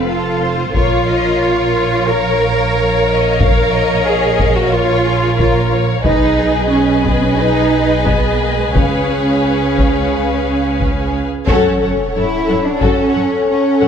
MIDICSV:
0, 0, Header, 1, 10, 480
1, 0, Start_track
1, 0, Tempo, 664452
1, 541, Time_signature, 4, 2, 24, 8
1, 5341, Tempo, 682594
1, 7741, Tempo, 667408
1, 9951, End_track
2, 0, Start_track
2, 0, Title_t, "Violin section"
2, 0, Program_c, 0, 48
2, 72, Note_on_c, 0, 69, 51
2, 307, Note_on_c, 0, 72, 53
2, 308, Note_off_c, 0, 69, 0
2, 543, Note_off_c, 0, 72, 0
2, 549, Note_on_c, 0, 73, 58
2, 778, Note_off_c, 0, 73, 0
2, 782, Note_on_c, 0, 75, 59
2, 1014, Note_on_c, 0, 73, 54
2, 1019, Note_off_c, 0, 75, 0
2, 1491, Note_off_c, 0, 73, 0
2, 1500, Note_on_c, 0, 73, 57
2, 1737, Note_off_c, 0, 73, 0
2, 1740, Note_on_c, 0, 70, 56
2, 1981, Note_off_c, 0, 70, 0
2, 1986, Note_on_c, 0, 73, 57
2, 2219, Note_off_c, 0, 73, 0
2, 2229, Note_on_c, 0, 75, 58
2, 2464, Note_off_c, 0, 75, 0
2, 2464, Note_on_c, 0, 77, 67
2, 2701, Note_off_c, 0, 77, 0
2, 2706, Note_on_c, 0, 75, 65
2, 3422, Note_off_c, 0, 75, 0
2, 3424, Note_on_c, 0, 73, 66
2, 3654, Note_on_c, 0, 68, 57
2, 3662, Note_off_c, 0, 73, 0
2, 3893, Note_on_c, 0, 70, 48
2, 3896, Note_off_c, 0, 68, 0
2, 4135, Note_off_c, 0, 70, 0
2, 4137, Note_on_c, 0, 73, 53
2, 4377, Note_off_c, 0, 73, 0
2, 4380, Note_on_c, 0, 71, 57
2, 4614, Note_off_c, 0, 71, 0
2, 4616, Note_on_c, 0, 68, 57
2, 5338, Note_on_c, 0, 71, 52
2, 5339, Note_off_c, 0, 68, 0
2, 5801, Note_on_c, 0, 75, 50
2, 5811, Note_off_c, 0, 71, 0
2, 6294, Note_off_c, 0, 75, 0
2, 6299, Note_on_c, 0, 73, 53
2, 7956, Note_off_c, 0, 73, 0
2, 8220, Note_on_c, 0, 69, 72
2, 8445, Note_off_c, 0, 69, 0
2, 8470, Note_on_c, 0, 78, 35
2, 8527, Note_off_c, 0, 78, 0
2, 8711, Note_on_c, 0, 73, 38
2, 8768, Note_off_c, 0, 73, 0
2, 8948, Note_on_c, 0, 78, 39
2, 9006, Note_off_c, 0, 78, 0
2, 9188, Note_on_c, 0, 69, 57
2, 9408, Note_off_c, 0, 69, 0
2, 9425, Note_on_c, 0, 78, 39
2, 9483, Note_off_c, 0, 78, 0
2, 9905, Note_on_c, 0, 78, 43
2, 9951, Note_off_c, 0, 78, 0
2, 9951, End_track
3, 0, Start_track
3, 0, Title_t, "Violin section"
3, 0, Program_c, 1, 48
3, 0, Note_on_c, 1, 77, 42
3, 513, Note_off_c, 1, 77, 0
3, 546, Note_on_c, 1, 73, 50
3, 546, Note_on_c, 1, 77, 52
3, 4351, Note_off_c, 1, 73, 0
3, 4351, Note_off_c, 1, 77, 0
3, 4382, Note_on_c, 1, 80, 57
3, 4384, Note_on_c, 1, 75, 51
3, 6275, Note_off_c, 1, 75, 0
3, 6302, Note_on_c, 1, 77, 41
3, 8055, Note_off_c, 1, 77, 0
3, 8055, Note_off_c, 1, 80, 0
3, 8225, Note_on_c, 1, 66, 66
3, 8448, Note_off_c, 1, 66, 0
3, 8474, Note_on_c, 1, 73, 39
3, 8531, Note_off_c, 1, 73, 0
3, 8715, Note_on_c, 1, 69, 37
3, 8773, Note_off_c, 1, 69, 0
3, 8954, Note_on_c, 1, 73, 40
3, 9011, Note_off_c, 1, 73, 0
3, 9181, Note_on_c, 1, 66, 58
3, 9404, Note_off_c, 1, 66, 0
3, 9423, Note_on_c, 1, 73, 39
3, 9481, Note_off_c, 1, 73, 0
3, 9904, Note_on_c, 1, 73, 44
3, 9951, Note_off_c, 1, 73, 0
3, 9951, End_track
4, 0, Start_track
4, 0, Title_t, "French horn section"
4, 0, Program_c, 2, 60
4, 548, Note_on_c, 2, 70, 55
4, 548, Note_on_c, 2, 73, 53
4, 711, Note_off_c, 2, 70, 0
4, 712, Note_off_c, 2, 73, 0
4, 1513, Note_on_c, 2, 73, 58
4, 1515, Note_on_c, 2, 70, 53
4, 1678, Note_off_c, 2, 73, 0
4, 1679, Note_off_c, 2, 70, 0
4, 2475, Note_on_c, 2, 73, 60
4, 2476, Note_on_c, 2, 70, 56
4, 2637, Note_off_c, 2, 70, 0
4, 2637, Note_off_c, 2, 73, 0
4, 3417, Note_on_c, 2, 73, 60
4, 3418, Note_on_c, 2, 70, 62
4, 3585, Note_off_c, 2, 73, 0
4, 3586, Note_off_c, 2, 70, 0
4, 4378, Note_on_c, 2, 71, 57
4, 4379, Note_on_c, 2, 75, 55
4, 4545, Note_off_c, 2, 71, 0
4, 4546, Note_off_c, 2, 75, 0
4, 5342, Note_on_c, 2, 75, 51
4, 5344, Note_on_c, 2, 71, 52
4, 5505, Note_off_c, 2, 75, 0
4, 5507, Note_off_c, 2, 71, 0
4, 6303, Note_on_c, 2, 77, 43
4, 6304, Note_on_c, 2, 71, 45
4, 6471, Note_off_c, 2, 71, 0
4, 6471, Note_off_c, 2, 77, 0
4, 7258, Note_on_c, 2, 77, 41
4, 7259, Note_on_c, 2, 71, 44
4, 7427, Note_off_c, 2, 71, 0
4, 7427, Note_off_c, 2, 77, 0
4, 8238, Note_on_c, 2, 73, 74
4, 8239, Note_on_c, 2, 69, 72
4, 9951, Note_off_c, 2, 69, 0
4, 9951, Note_off_c, 2, 73, 0
4, 9951, End_track
5, 0, Start_track
5, 0, Title_t, "String section"
5, 0, Program_c, 3, 48
5, 8222, Note_on_c, 3, 61, 71
5, 8226, Note_on_c, 3, 69, 64
5, 8226, Note_on_c, 3, 73, 70
5, 8231, Note_on_c, 3, 78, 62
5, 9951, Note_off_c, 3, 61, 0
5, 9951, Note_off_c, 3, 69, 0
5, 9951, Note_off_c, 3, 73, 0
5, 9951, Note_off_c, 3, 78, 0
5, 9951, End_track
6, 0, Start_track
6, 0, Title_t, "Viola section"
6, 0, Program_c, 4, 48
6, 0, Note_on_c, 4, 60, 44
6, 0, Note_on_c, 4, 69, 42
6, 508, Note_off_c, 4, 69, 0
6, 510, Note_off_c, 4, 60, 0
6, 542, Note_on_c, 4, 73, 54
6, 547, Note_on_c, 4, 70, 53
6, 4372, Note_on_c, 4, 68, 51
6, 4377, Note_off_c, 4, 73, 0
6, 4377, Note_on_c, 4, 71, 58
6, 4380, Note_off_c, 4, 70, 0
6, 8079, Note_off_c, 4, 68, 0
6, 8082, Note_off_c, 4, 71, 0
6, 8225, Note_on_c, 4, 69, 81
6, 8448, Note_off_c, 4, 69, 0
6, 8462, Note_on_c, 4, 69, 42
6, 8520, Note_off_c, 4, 69, 0
6, 8706, Note_on_c, 4, 69, 40
6, 8763, Note_off_c, 4, 69, 0
6, 8939, Note_on_c, 4, 69, 41
6, 8996, Note_off_c, 4, 69, 0
6, 9180, Note_on_c, 4, 69, 56
6, 9404, Note_off_c, 4, 69, 0
6, 9427, Note_on_c, 4, 69, 39
6, 9485, Note_off_c, 4, 69, 0
6, 9902, Note_on_c, 4, 69, 51
6, 9951, Note_off_c, 4, 69, 0
6, 9951, End_track
7, 0, Start_track
7, 0, Title_t, "Cello section"
7, 0, Program_c, 5, 48
7, 60, Note_on_c, 5, 65, 65
7, 531, Note_off_c, 5, 65, 0
7, 540, Note_on_c, 5, 65, 75
7, 1483, Note_off_c, 5, 65, 0
7, 1501, Note_on_c, 5, 70, 84
7, 2451, Note_off_c, 5, 70, 0
7, 2460, Note_on_c, 5, 70, 83
7, 2928, Note_off_c, 5, 70, 0
7, 2934, Note_on_c, 5, 68, 75
7, 3296, Note_off_c, 5, 68, 0
7, 3298, Note_on_c, 5, 66, 66
7, 3413, Note_on_c, 5, 65, 81
7, 3418, Note_off_c, 5, 66, 0
7, 3886, Note_off_c, 5, 65, 0
7, 3895, Note_on_c, 5, 65, 64
7, 4131, Note_off_c, 5, 65, 0
7, 4372, Note_on_c, 5, 63, 81
7, 4827, Note_off_c, 5, 63, 0
7, 4854, Note_on_c, 5, 61, 70
7, 5096, Note_on_c, 5, 59, 58
7, 5097, Note_off_c, 5, 61, 0
7, 5218, Note_off_c, 5, 59, 0
7, 5221, Note_on_c, 5, 61, 64
7, 5340, Note_off_c, 5, 61, 0
7, 5340, Note_on_c, 5, 63, 81
7, 5812, Note_off_c, 5, 63, 0
7, 5814, Note_on_c, 5, 59, 64
7, 6055, Note_off_c, 5, 59, 0
7, 6059, Note_on_c, 5, 58, 50
7, 6179, Note_off_c, 5, 58, 0
7, 6186, Note_on_c, 5, 56, 43
7, 6303, Note_on_c, 5, 61, 60
7, 6304, Note_off_c, 5, 56, 0
7, 7958, Note_off_c, 5, 61, 0
7, 8226, Note_on_c, 5, 61, 80
7, 8676, Note_off_c, 5, 61, 0
7, 8704, Note_on_c, 5, 64, 70
7, 9064, Note_off_c, 5, 64, 0
7, 9069, Note_on_c, 5, 62, 55
7, 9184, Note_on_c, 5, 61, 71
7, 9186, Note_off_c, 5, 62, 0
7, 9654, Note_off_c, 5, 61, 0
7, 9662, Note_on_c, 5, 61, 64
7, 9951, Note_off_c, 5, 61, 0
7, 9951, End_track
8, 0, Start_track
8, 0, Title_t, "Double bass section"
8, 0, Program_c, 6, 48
8, 0, Note_on_c, 6, 29, 40
8, 511, Note_off_c, 6, 29, 0
8, 538, Note_on_c, 6, 34, 56
8, 4347, Note_off_c, 6, 34, 0
8, 4380, Note_on_c, 6, 35, 58
8, 6272, Note_off_c, 6, 35, 0
8, 6294, Note_on_c, 6, 37, 38
8, 8050, Note_off_c, 6, 37, 0
8, 8227, Note_on_c, 6, 42, 69
8, 8449, Note_off_c, 6, 42, 0
8, 8470, Note_on_c, 6, 42, 39
8, 8528, Note_off_c, 6, 42, 0
8, 8706, Note_on_c, 6, 42, 39
8, 8763, Note_off_c, 6, 42, 0
8, 8945, Note_on_c, 6, 42, 41
8, 9002, Note_off_c, 6, 42, 0
8, 9188, Note_on_c, 6, 42, 60
8, 9246, Note_off_c, 6, 42, 0
8, 9424, Note_on_c, 6, 42, 39
8, 9481, Note_off_c, 6, 42, 0
8, 9902, Note_on_c, 6, 42, 40
8, 9951, Note_off_c, 6, 42, 0
8, 9951, End_track
9, 0, Start_track
9, 0, Title_t, "Sub drop"
9, 0, Program_c, 7, 103
9, 8225, Note_on_c, 7, 60, 57
9, 9951, Note_off_c, 7, 60, 0
9, 9951, End_track
10, 0, Start_track
10, 0, Title_t, "Taiko and cinematic ensemble drums"
10, 537, Note_on_c, 9, 41, 58
10, 609, Note_off_c, 9, 41, 0
10, 2460, Note_on_c, 9, 41, 77
10, 2532, Note_off_c, 9, 41, 0
10, 3174, Note_on_c, 9, 41, 67
10, 3247, Note_off_c, 9, 41, 0
10, 3898, Note_on_c, 9, 41, 68
10, 3970, Note_off_c, 9, 41, 0
10, 4374, Note_on_c, 9, 41, 73
10, 4446, Note_off_c, 9, 41, 0
10, 5096, Note_on_c, 9, 41, 64
10, 5169, Note_off_c, 9, 41, 0
10, 5813, Note_on_c, 9, 41, 62
10, 5884, Note_off_c, 9, 41, 0
10, 6298, Note_on_c, 9, 41, 79
10, 6368, Note_off_c, 9, 41, 0
10, 7022, Note_on_c, 9, 41, 61
10, 7092, Note_off_c, 9, 41, 0
10, 7738, Note_on_c, 9, 41, 60
10, 7810, Note_off_c, 9, 41, 0
10, 8221, Note_on_c, 9, 41, 76
10, 8293, Note_off_c, 9, 41, 0
10, 9183, Note_on_c, 9, 41, 65
10, 9255, Note_off_c, 9, 41, 0
10, 9951, End_track
0, 0, End_of_file